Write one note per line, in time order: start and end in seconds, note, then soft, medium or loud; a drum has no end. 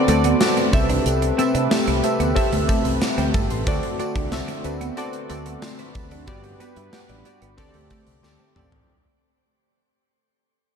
0.00 0.71 D3 medium
0.00 0.75 D3 medium
0.00 0.71 A3 medium
0.00 0.08 C4 loud
0.00 0.71 C4 medium
0.00 0.08 F#4 loud
0.00 0.70 F#4 medium
0.00 0.09 A4 loud
0.00 0.75 B4 medium
0.00 0.09 D5 loud
0.08 0.32 D2 medium
0.08 0.21 A3 medium
0.08 0.36 C4 medium
0.08 0.36 F#4 medium
0.08 0.36 A4 medium
0.08 0.36 D5 medium
0.08 closed hi-hat medium
0.08 tambourine soft
0.24 0.38 B3 medium
0.24 closed hi-hat medium
0.40 0.68 C4 medium
0.40 0.69 F#4 medium
0.40 0.69 A4 medium
0.40 0.69 D5 medium
0.40 snare loud
0.40 tambourine medium
0.57 0.70 C4 medium
0.57 closed hi-hat soft
0.57 tambourine soft
0.73 0.98 C2 medium
0.73 3.64 C3 medium
0.73 1.67 C3 medium
0.73 6.24 A3 medium
0.73 1.29 C4 medium
0.73 3.64 G4 medium
0.73 1.29 G4 medium
0.73 1.29 A4 medium
0.73 3.64 B4 medium
0.73 1.29 E5 loud
0.73 muted clean electric guitar stroke soft
0.73 kick loud
0.73 closed hi-hat medium
0.73 tambourine soft
0.90 1.02 D4 medium
0.90 closed hi-hat medium
1.06 1.30 C2 loud
1.06 closed hi-hat medium
1.06 tambourine medium
1.22 muted clean electric guitar stroke soft
1.22 closed hi-hat soft
1.38 1.66 C4 medium
1.38 1.52 C4 medium
1.38 1.66 G4 medium
1.38 1.67 A4 medium
1.38 1.67 E5 loud
1.38 closed hi-hat medium
1.38 tambourine medium
1.55 1.67 C3 loud
1.55 1.68 D4 medium
1.55 closed hi-hat medium
1.70 1.99 C4 medium
1.70 1.99 G4 medium
1.70 1.99 A4 medium
1.70 1.99 E5 medium
1.70 snare loud
1.70 tambourine medium
1.87 2.00 C2 loud
1.87 2.01 C4 medium
1.87 closed hi-hat soft
1.87 tambourine soft
2.03 2.31 C4 medium
2.03 2.31 G4 medium
2.03 2.32 A4 medium
2.03 2.32 E5 medium
2.03 muted clean electric guitar stroke soft
2.03 closed hi-hat medium
2.03 tambourine soft
2.20 2.32 D2 medium
2.20 2.33 B3 medium
2.20 closed hi-hat medium
2.20 tambourine soft
2.35 2.64 C4 loud
2.35 2.64 G4 loud
2.35 2.64 A4 loud
2.35 2.64 E5 loud
2.35 muted clean electric guitar stroke soft
2.35 kick medium
2.35 closed hi-hat medium
2.35 tambourine medium
2.52 2.65 D2 medium
2.52 2.66 A3 medium
2.52 closed hi-hat medium
2.68 2.82 A3 medium
2.68 2.96 C4 medium
2.68 2.97 G4 medium
2.68 2.97 A4 medium
2.68 2.97 E5 medium
2.68 kick medium
2.68 closed hi-hat medium
2.68 tambourine soft
2.85 2.97 C2 medium
2.85 closed hi-hat medium
2.85 tambourine soft
3.01 3.17 F#5 medium
3.01 muted clean electric guitar stroke soft
3.01 snare loud
3.01 tambourine medium
3.18 3.30 D2 medium
3.18 3.31 C4 medium
3.18 3.33 G5 medium
3.18 closed hi-hat soft
3.34 3.47 G1 medium
3.34 3.47 A3 medium
3.34 3.50 A5 medium
3.34 kick loud
3.34 closed hi-hat medium
3.34 tambourine medium
3.50 3.63 A1 medium
3.50 3.82 C6 medium
3.50 closed hi-hat medium
3.66 3.79 D2 loud
3.66 6.25 D3 medium
3.66 4.61 D3 medium
3.66 6.25 C4 medium
3.66 3.95 C4 loud
3.66 7.54 F#4 loud
3.66 3.95 F#4 loud
3.66 3.95 A4 loud
3.66 3.95 D5 loud
3.66 kick loud
3.66 closed hi-hat medium
3.66 tambourine medium
3.83 muted clean electric guitar stroke soft
3.83 closed hi-hat soft
3.99 4.27 C4 medium
3.99 4.12 C4 medium
3.99 4.27 F#4 medium
3.99 4.28 A4 medium
3.99 4.28 D5 loud
3.99 closed hi-hat medium
3.99 tambourine medium
4.16 4.40 C2 medium
4.16 4.29 D4 medium
4.16 kick medium
4.16 closed hi-hat medium
4.32 4.60 C4 medium
4.32 4.60 F#4 medium
4.32 4.60 A4 medium
4.32 4.60 E5 medium
4.32 snare loud
4.32 tambourine medium
4.48 4.61 C4 medium
4.48 closed hi-hat medium
4.48 tambourine soft
4.64 4.89 D2 medium
4.64 4.92 C4 medium
4.64 4.92 F#4 medium
4.64 4.93 A4 medium
4.64 4.93 B4 medium
4.64 muted clean electric guitar stroke soft
4.64 closed hi-hat medium
4.64 tambourine soft
4.81 4.94 B3 medium
4.81 closed hi-hat medium
4.81 tambourine soft
4.97 5.25 C4 loud
4.97 5.25 F#4 loud
4.97 5.25 A4 loud
4.97 5.25 D5 loud
4.97 muted clean electric guitar stroke soft
4.97 closed hi-hat medium
4.97 tambourine soft
5.13 closed hi-hat medium
5.29 5.55 D2 medium
5.29 5.43 A3 medium
5.29 5.57 C4 medium
5.29 5.58 F#4 medium
5.29 5.58 A4 medium
5.29 5.58 D5 loud
5.29 closed hi-hat medium
5.29 tambourine soft
5.46 5.59 B3 medium
5.46 closed hi-hat medium
5.62 5.78 C6 medium
5.62 snare loud
5.62 tambourine medium
5.79 5.92 C4 medium
5.79 5.94 B5 medium
5.79 closed hi-hat soft
5.79 tambourine soft
5.95 6.29 D2 medium
5.95 6.11 A5 medium
5.95 muted clean electric guitar stroke soft
5.95 kick loud
5.95 closed hi-hat medium
5.95 tambourine medium
6.11 6.25 D4 medium
6.11 6.43 F#5 medium
6.11 closed hi-hat medium
6.27 6.52 G1 loud
6.27 7.22 G2 medium
6.27 7.57 G3 medium
6.27 6.55 B3 loud
6.27 7.57 D4 medium
6.27 6.56 F#4 medium
6.27 6.56 G4 loud
6.27 7.57 B4 loud
6.27 6.56 D5 loud
6.27 kick loud
6.27 closed hi-hat medium
6.27 tambourine medium
6.44 muted clean electric guitar stroke soft
6.44 closed hi-hat soft
6.60 6.88 B3 medium
6.60 6.73 B3 medium
6.60 6.88 F#4 medium
6.60 6.88 G4 medium
6.60 6.88 B4 medium
6.60 closed hi-hat medium
6.60 tambourine medium
6.76 6.89 G2 loud
6.76 6.90 E4 medium
6.76 closed hi-hat medium
6.92 7.20 B3 medium
6.92 7.21 F#4 medium
6.92 7.21 G4 medium
6.92 7.21 D5 medium
6.92 snare loud
6.92 tambourine medium
7.09 7.22 A1 medium
7.09 7.22 D4 medium
7.09 closed hi-hat soft
7.25 7.53 B3 medium
7.25 7.53 F#4 medium
7.25 7.54 G4 medium
7.25 7.54 D5 medium
7.25 muted clean electric guitar stroke soft
7.25 closed hi-hat medium
7.25 tambourine soft
7.42 7.54 G1 medium
7.42 7.55 B3 medium
7.42 closed hi-hat medium
7.57 7.70 D2 loud
7.57 8.52 D3 medium
7.57 8.87 D3 medium
7.57 8.87 A3 medium
7.57 7.86 C4 loud
7.57 8.88 C4 medium
7.57 7.86 G4 loud
7.57 8.88 G4 medium
7.57 7.86 A4 loud
7.57 7.86 D5 loud
7.57 muted clean electric guitar stroke soft
7.57 kick medium
7.57 closed hi-hat medium
7.57 tambourine soft
7.74 7.87 D2 medium
7.74 7.88 A3 medium
7.74 closed hi-hat medium
7.90 8.04 A3 medium
7.90 8.18 C4 medium
7.90 8.19 G4 medium
7.90 8.19 A4 medium
7.90 8.19 D5 medium
7.90 kick medium
7.90 closed hi-hat medium
7.90 tambourine soft
8.07 8.19 C2 medium
8.07 closed hi-hat medium
8.23 8.36 D2 medium
8.23 8.51 C4 medium
8.23 8.51 G4 medium
8.23 8.51 A4 medium
8.23 8.52 D5 medium
8.23 muted clean electric guitar stroke soft
8.23 snare medium
8.23 tambourine medium
8.40 8.53 C4 medium
8.56 8.80 A1 medium
8.56 8.69 A3 medium
8.56 8.84 C4 medium
8.56 8.84 G4 medium
8.56 8.84 A4 medium
8.56 8.84 D5 medium
8.56 mid tom medium
8.56 tambourine soft
8.72 floor tom medium